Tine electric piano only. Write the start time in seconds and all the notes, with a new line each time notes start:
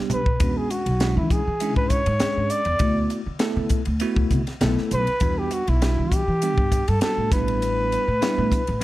Already playing: G3 B3 D4 G4
0.40 G#3 C#4 D4 F#4
1.00 G#3 C#4 D4 E4
1.61 G#3 C#4 D4 E4
2.21 G#3 C#4 D4 G#4
2.81 A3 B3 E4 F#4
3.40 A3 B3 E4 A4
4.01 A3 B3 E4 F#4
4.62 A3 B3 E4 A4
5.22 G3 B3 D4 F#4
5.82 G3 B3 D4 F#4
6.43 G3 B3 D4 G4
7.02 G3 B3 D4 F#4
7.32 G3 B3 D4 E4
8.22 G3 B3 D4 E4